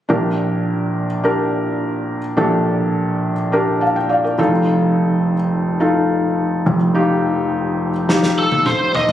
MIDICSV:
0, 0, Header, 1, 4, 480
1, 0, Start_track
1, 0, Key_signature, -2, "major"
1, 0, Tempo, 571429
1, 77, Time_signature, 4, 2, 24, 8
1, 7661, End_track
2, 0, Start_track
2, 0, Title_t, "Lead electric guitar"
2, 0, Program_c, 0, 29
2, 7043, Note_on_c, 0, 69, 67
2, 7276, Note_on_c, 0, 72, 75
2, 7288, Note_off_c, 0, 69, 0
2, 7523, Note_off_c, 0, 72, 0
2, 7526, Note_on_c, 0, 75, 82
2, 7661, Note_off_c, 0, 75, 0
2, 7661, End_track
3, 0, Start_track
3, 0, Title_t, "Felt piano"
3, 0, Program_c, 1, 0
3, 73, Note_on_c, 1, 62, 56
3, 82, Note_on_c, 1, 46, 49
3, 82, Note_on_c, 1, 67, 56
3, 83, Note_on_c, 1, 34, 52
3, 86, Note_on_c, 1, 70, 60
3, 239, Control_c, 1, 64, 127
3, 872, Note_off_c, 1, 62, 0
3, 876, Note_off_c, 1, 67, 0
3, 878, Note_off_c, 1, 70, 0
3, 1036, Note_on_c, 1, 62, 54
3, 1039, Note_on_c, 1, 67, 49
3, 1047, Note_on_c, 1, 70, 66
3, 1834, Note_off_c, 1, 62, 0
3, 1835, Note_off_c, 1, 67, 0
3, 1839, Note_off_c, 1, 70, 0
3, 1967, Note_off_c, 1, 34, 0
3, 1967, Note_off_c, 1, 46, 0
3, 1988, Note_on_c, 1, 62, 59
3, 1993, Note_on_c, 1, 67, 61
3, 1994, Note_on_c, 1, 34, 53
3, 1994, Note_on_c, 1, 46, 47
3, 1995, Note_on_c, 1, 69, 68
3, 2790, Note_off_c, 1, 62, 0
3, 2792, Note_off_c, 1, 67, 0
3, 2793, Note_off_c, 1, 69, 0
3, 2957, Note_on_c, 1, 62, 54
3, 2964, Note_on_c, 1, 67, 50
3, 2965, Note_on_c, 1, 70, 65
3, 3200, Note_on_c, 1, 81, 44
3, 3202, Note_off_c, 1, 70, 0
3, 3207, Note_on_c, 1, 77, 41
3, 3313, Note_off_c, 1, 81, 0
3, 3317, Note_off_c, 1, 77, 0
3, 3326, Note_on_c, 1, 79, 54
3, 3436, Note_off_c, 1, 79, 0
3, 3438, Note_on_c, 1, 77, 50
3, 3444, Note_on_c, 1, 74, 46
3, 3551, Note_off_c, 1, 74, 0
3, 3552, Note_off_c, 1, 77, 0
3, 3563, Note_on_c, 1, 74, 42
3, 3566, Note_on_c, 1, 70, 37
3, 3643, Note_off_c, 1, 34, 0
3, 3643, Note_off_c, 1, 46, 0
3, 3678, Note_off_c, 1, 62, 0
3, 3680, Note_on_c, 1, 63, 61
3, 3681, Note_off_c, 1, 67, 0
3, 3684, Note_on_c, 1, 29, 54
3, 3685, Note_on_c, 1, 41, 54
3, 3685, Note_on_c, 1, 65, 64
3, 3689, Note_on_c, 1, 69, 77
3, 3691, Control_c, 1, 64, 0
3, 3789, Note_off_c, 1, 74, 0
3, 3790, Note_off_c, 1, 70, 0
3, 3861, Control_c, 1, 64, 127
3, 4476, Note_off_c, 1, 63, 0
3, 4478, Note_off_c, 1, 65, 0
3, 4480, Note_off_c, 1, 69, 0
3, 4872, Note_on_c, 1, 63, 57
3, 4877, Note_on_c, 1, 65, 57
3, 4880, Note_on_c, 1, 69, 59
3, 5567, Note_off_c, 1, 29, 0
3, 5568, Note_off_c, 1, 41, 0
3, 5597, Note_on_c, 1, 41, 60
3, 5598, Note_on_c, 1, 29, 56
3, 5672, Note_off_c, 1, 63, 0
3, 5674, Note_off_c, 1, 65, 0
3, 5676, Note_off_c, 1, 69, 0
3, 5834, Note_on_c, 1, 63, 64
3, 5839, Note_on_c, 1, 65, 61
3, 5841, Note_on_c, 1, 67, 70
3, 6632, Note_off_c, 1, 63, 0
3, 6635, Note_off_c, 1, 65, 0
3, 6636, Note_off_c, 1, 67, 0
3, 6793, Note_on_c, 1, 63, 59
3, 6796, Note_on_c, 1, 65, 50
3, 6803, Note_on_c, 1, 67, 60
3, 7484, Note_off_c, 1, 29, 0
3, 7484, Note_off_c, 1, 41, 0
3, 7592, Note_off_c, 1, 63, 0
3, 7594, Note_off_c, 1, 65, 0
3, 7597, Note_off_c, 1, 67, 0
3, 7661, End_track
4, 0, Start_track
4, 0, Title_t, "Drums"
4, 6796, Note_on_c, 9, 38, 44
4, 6880, Note_off_c, 9, 38, 0
4, 6912, Note_on_c, 9, 38, 40
4, 6996, Note_off_c, 9, 38, 0
4, 7153, Note_on_c, 9, 48, 57
4, 7237, Note_off_c, 9, 48, 0
4, 7273, Note_on_c, 9, 47, 67
4, 7357, Note_off_c, 9, 47, 0
4, 7515, Note_on_c, 9, 43, 77
4, 7599, Note_off_c, 9, 43, 0
4, 7633, Note_on_c, 9, 43, 75
4, 7661, Note_off_c, 9, 43, 0
4, 7661, End_track
0, 0, End_of_file